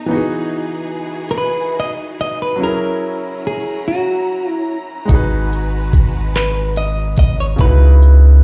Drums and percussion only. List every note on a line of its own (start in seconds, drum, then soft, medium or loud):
5.09 kick loud
5.09 closed hi-hat medium
5.53 closed hi-hat medium
5.93 kick loud
5.93 closed hi-hat soft
6.36 clap loud
6.36 closed hi-hat medium
6.76 closed hi-hat medium
7.17 kick medium
7.17 closed hi-hat medium
7.58 kick loud
7.58 closed hi-hat medium
8.02 closed hi-hat medium